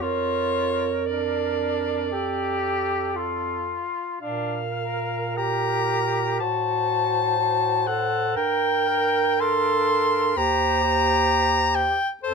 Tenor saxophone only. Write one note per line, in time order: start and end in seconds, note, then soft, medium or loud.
0.01 0.96 F4 medium
1.05 2.07 D4 soft
2.12 3.17 G4 medium
3.16 4.21 F4 soft
4.21 4.62 D4 soft
4.78 5.39 A#4 soft
5.37 6.42 G4 medium
6.40 7.38 F#4 medium
7.38 7.88 F#4 soft
7.87 8.37 A4 medium
8.36 8.88 A#4 medium
8.88 9.40 A#4 medium
9.41 10.36 A4 medium
10.37 10.83 G4 medium
10.83 11.94 G4 medium
12.23 12.34 A4 medium